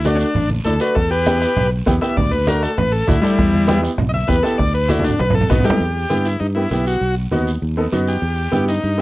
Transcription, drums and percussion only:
0.05 high conga loud
0.05 short guiro medium
0.20 short guiro medium
0.35 high conga soft
0.35 low conga medium
0.35 long guiro medium
0.50 high conga medium
0.65 high conga medium
0.65 short guiro medium
0.80 short guiro medium
0.96 bombo low medium
0.96 bombo rim medium
0.96 high conga soft
0.96 long guiro medium
1.26 bombo rim medium
1.26 high conga loud
1.26 short guiro medium
1.42 bombo rim medium
1.42 short guiro medium
1.57 bombo rim medium
1.57 high conga soft
1.57 low conga medium
1.57 long guiro medium
1.87 bombo low medium
1.87 bombo rim medium
1.87 high conga medium
1.87 short guiro medium
2.02 bombo rim medium
2.02 short guiro medium
2.17 bombo low medium
2.17 bombo rim medium
2.17 high conga soft
2.17 low conga medium
2.17 long guiro medium
2.32 high conga medium
2.47 bombo rim medium
2.47 high conga loud
2.47 short guiro medium
2.63 bombo rim medium
2.63 short guiro medium
2.78 bombo rim medium
2.78 high conga soft
2.78 low conga medium
2.78 long guiro medium
3.08 bombo low medium
3.08 bombo rim medium
3.08 high conga medium
3.08 low conga medium
3.08 short guiro medium
3.23 bombo rim medium
3.23 short guiro medium
3.39 bombo low medium
3.39 bombo rim medium
3.39 long guiro medium
3.53 high conga medium
3.68 bombo rim medium
3.68 high conga loud
3.68 short guiro medium
3.84 bombo rim medium
3.84 short guiro medium
3.98 bombo rim medium
3.98 high conga soft
3.98 low conga medium
3.98 long guiro medium
4.14 high conga medium
4.28 bombo low medium
4.28 bombo rim medium
4.28 high conga medium
4.28 short guiro medium
4.44 bombo rim medium
4.44 short guiro medium
4.59 bombo low medium
4.59 bombo rim medium
4.59 long guiro medium
4.89 bombo rim medium
4.89 high conga medium
4.89 short guiro medium
4.99 high conga loud
5.04 bombo rim medium
5.04 short guiro medium
5.10 low conga medium
5.19 bombo rim medium
5.19 high conga medium
5.19 long guiro medium
5.30 low conga loud
5.41 low conga medium
5.50 bombo low medium
5.50 bombo rim medium
5.50 low conga loud
5.50 short guiro medium
5.60 low conga medium
5.64 bombo rim medium
5.64 short guiro medium
5.70 low conga loud
5.80 high conga soft
5.80 long guiro medium
6.10 high conga medium
6.10 short guiro medium
6.25 short guiro medium
6.41 high conga soft
6.41 long guiro medium
6.71 high conga medium
6.71 short guiro medium
6.86 short guiro medium
7.02 long guiro medium
7.31 high conga medium
7.31 short guiro medium
7.47 short guiro medium
7.62 high conga soft
7.62 long guiro medium
7.93 high conga medium
7.93 short guiro medium
8.08 short guiro medium
8.23 long guiro medium
8.53 high conga medium
8.53 short guiro medium
8.68 short guiro medium
8.84 high conga soft
8.84 long guiro medium

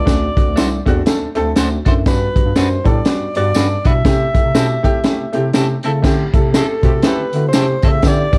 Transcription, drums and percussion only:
0.07 kick loud
0.07 snare loud
0.07 closed hi-hat medium
0.07 tambourine medium
0.37 kick loud
0.37 closed hi-hat medium
0.57 snare loud
0.57 closed hi-hat medium
0.57 tambourine loud
0.86 kick medium
0.86 closed hi-hat medium
1.06 snare loud
1.06 closed hi-hat medium
1.06 tambourine medium
1.35 closed hi-hat medium
1.56 snare loud
1.56 closed hi-hat medium
1.56 tambourine loud
1.86 kick medium
1.86 snare soft
1.86 closed hi-hat medium
2.06 kick loud
2.06 snare loud
2.06 closed hi-hat medium
2.06 tambourine medium
2.36 kick loud
2.36 closed hi-hat medium
2.56 snare medium
2.56 closed hi-hat medium
2.56 tambourine medium
2.85 kick medium
2.85 closed hi-hat medium
3.05 snare loud
3.05 closed hi-hat medium
3.05 tambourine medium
3.35 closed hi-hat medium
3.54 snare loud
3.54 closed hi-hat medium
3.54 tambourine loud
3.85 kick loud
3.85 closed hi-hat medium
4.05 kick loud
4.05 snare loud
4.05 closed hi-hat medium
4.05 tambourine medium
4.35 kick loud
4.35 closed hi-hat medium
4.55 snare loud
4.55 closed hi-hat medium
4.55 tambourine medium
4.84 kick medium
4.84 closed hi-hat medium
5.04 snare loud
5.04 closed hi-hat medium
5.04 tambourine medium
5.33 closed hi-hat medium
5.53 snare loud
5.53 closed hi-hat medium
5.53 tambourine loud
5.83 closed hi-hat medium
6.04 kick loud
6.04 snare loud
6.04 crash medium
6.04 tambourine medium
6.34 kick loud
6.34 closed hi-hat medium
6.54 snare loud
6.54 closed hi-hat medium
6.54 tambourine medium
6.83 kick medium
6.83 closed hi-hat medium
7.03 snare loud
7.03 closed hi-hat medium
7.03 tambourine medium
7.33 closed hi-hat medium
7.53 snare loud
7.53 closed hi-hat medium
7.53 tambourine loud
7.83 kick medium
7.83 snare soft
7.83 closed hi-hat medium
8.02 kick loud
8.02 snare loud
8.02 closed hi-hat medium
8.02 tambourine medium
8.33 kick loud
8.33 closed hi-hat medium

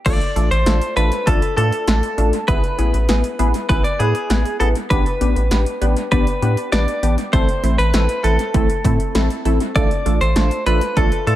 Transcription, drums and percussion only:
0.06 kick loud
0.06 closed hi-hat medium
0.06 crash loud
0.21 closed hi-hat soft
0.36 closed hi-hat medium
0.52 closed hi-hat medium
0.66 snare loud
0.66 closed hi-hat medium
0.82 closed hi-hat medium
0.97 closed hi-hat medium
1.12 closed hi-hat medium
1.27 kick loud
1.27 closed hi-hat medium
1.42 closed hi-hat medium
1.58 closed hi-hat medium
1.72 closed hi-hat medium
1.88 snare loud
1.88 closed hi-hat medium
2.03 closed hi-hat soft
2.18 closed hi-hat medium
2.33 closed hi-hat medium
2.48 kick loud
2.48 closed hi-hat medium
2.64 closed hi-hat soft
2.79 closed hi-hat medium
2.94 closed hi-hat medium
3.09 snare loud
3.09 closed hi-hat medium
3.24 closed hi-hat medium
3.39 closed hi-hat medium
3.54 closed hi-hat medium
3.69 kick loud
3.69 closed hi-hat medium
3.85 closed hi-hat medium
4.00 closed hi-hat medium
4.15 closed hi-hat medium
4.30 snare loud
4.30 closed hi-hat medium
4.45 closed hi-hat soft
4.61 closed hi-hat medium
4.75 closed hi-hat medium
4.91 kick loud
4.91 closed hi-hat medium
5.06 closed hi-hat soft
5.21 closed hi-hat medium
5.36 closed hi-hat medium
5.51 snare loud
5.51 closed hi-hat medium
5.66 closed hi-hat medium
5.82 closed hi-hat medium
5.96 closed hi-hat medium
6.12 kick medium
6.12 closed hi-hat medium
6.27 closed hi-hat medium
6.42 closed hi-hat medium
6.57 closed hi-hat medium
6.72 snare loud
6.72 closed hi-hat medium
6.88 closed hi-hat medium
7.03 closed hi-hat medium
7.18 closed hi-hat medium
7.33 kick loud
7.33 closed hi-hat medium
7.49 closed hi-hat soft
7.64 closed hi-hat medium
7.79 closed hi-hat medium
7.94 snare loud
7.94 closed hi-hat medium
8.09 closed hi-hat medium
8.24 closed hi-hat medium
8.39 closed hi-hat medium
8.54 kick loud
8.54 closed hi-hat medium
8.70 closed hi-hat medium
8.85 kick loud
8.85 closed hi-hat medium
9.00 closed hi-hat medium
9.15 snare loud
9.15 closed hi-hat medium
9.30 closed hi-hat soft
9.45 closed hi-hat medium
9.60 closed hi-hat medium
9.76 kick loud
9.76 closed hi-hat medium
9.91 closed hi-hat soft
10.06 closed hi-hat medium
10.21 closed hi-hat medium
10.36 snare loud
10.36 closed hi-hat medium
10.51 closed hi-hat medium
10.66 closed hi-hat medium
10.81 closed hi-hat medium
10.97 kick medium
10.97 closed hi-hat medium
11.12 closed hi-hat medium
11.27 closed hi-hat medium

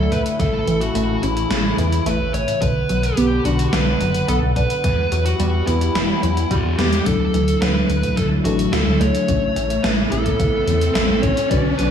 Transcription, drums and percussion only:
0.12 kick medium
0.12 closed hi-hat medium
0.26 closed hi-hat medium
0.40 kick loud
0.40 snare soft
0.40 closed hi-hat medium
0.67 closed hi-hat medium
0.81 closed hi-hat medium
0.95 closed hi-hat medium
1.23 closed hi-hat medium
1.37 closed hi-hat medium
1.51 snare loud
1.51 closed hi-hat medium
1.78 closed hi-hat medium
1.92 closed hi-hat medium
2.06 closed hi-hat medium
2.34 closed hi-hat medium
2.48 closed hi-hat medium
2.62 kick loud
2.62 closed hi-hat medium
2.89 closed hi-hat medium
3.03 closed hi-hat medium
3.17 closed hi-hat medium
3.45 closed hi-hat medium
3.59 closed hi-hat medium
3.73 snare loud
3.73 closed hi-hat medium
4.01 closed hi-hat medium
4.14 closed hi-hat medium
4.28 closed hi-hat medium
4.56 kick medium
4.56 closed hi-hat medium
4.70 closed hi-hat medium
4.84 kick loud
4.84 snare soft
4.84 closed hi-hat medium
5.12 closed hi-hat medium
5.26 closed hi-hat medium
5.40 closed hi-hat loud
5.67 closed hi-hat medium
5.81 closed hi-hat medium
5.95 snare loud
5.95 closed hi-hat medium
6.23 closed hi-hat medium
6.37 closed hi-hat medium
6.51 kick loud
6.51 closed hi-hat medium
6.79 snare medium
6.79 closed hi-hat medium
6.93 closed hi-hat medium
7.06 kick loud
7.06 closed hi-hat medium
7.34 closed hi-hat medium
7.48 closed hi-hat medium
7.62 snare loud
7.62 closed hi-hat loud
7.90 closed hi-hat medium
8.03 kick medium
8.03 closed hi-hat medium
8.17 kick loud
8.17 snare soft
8.17 closed hi-hat medium
8.45 closed hi-hat medium
8.59 closed hi-hat medium
8.73 snare loud
8.73 closed hi-hat loud
9.01 closed hi-hat medium
9.15 closed hi-hat medium
9.28 kick loud
9.28 closed hi-hat loud
9.56 closed hi-hat medium
9.70 closed hi-hat medium
9.84 snare loud
9.84 closed hi-hat medium
10.12 closed hi-hat medium
10.26 kick medium
10.26 closed hi-hat medium
10.40 kick loud
10.40 closed hi-hat loud
10.68 closed hi-hat medium
10.81 closed hi-hat medium
10.95 snare loud
10.95 closed hi-hat medium
11.23 kick loud
11.23 closed hi-hat medium
11.37 closed hi-hat medium
11.51 kick loud
11.51 closed hi-hat loud
11.79 closed hi-hat medium

